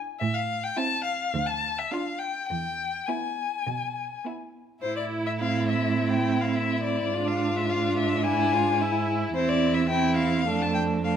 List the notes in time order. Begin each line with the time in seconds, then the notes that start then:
0.20 A2 E5
0.35 F5
0.64 G5
0.76 C4 E4 A5
1.04 F5
1.34 D2
1.46 A5
1.79 E5
1.91 D4 F4 F5
2.19 G5
2.48 E2 G5
3.07 B3 E4 G#5
3.67 B2
4.24 B3 E4
4.82 A2 E4 C5
4.97 D5
5.26 E5
5.39 C4 F5
5.69 E5
6.12 G5
6.42 F5
6.55 E5
6.83 D5
7.13 G#2 D4 F4
7.28 F5
7.57 E5
7.68 D4 F5
7.98 E5
8.24 E4 G#5
8.53 F4
8.81 E4
9.35 E2 C4 E4 C5
9.49 D5
9.74 E5
9.90 C4 E4 G5
10.17 F5
10.47 F2 A3 D4
10.62 A5
10.75 G5
11.04 A3 D4 F5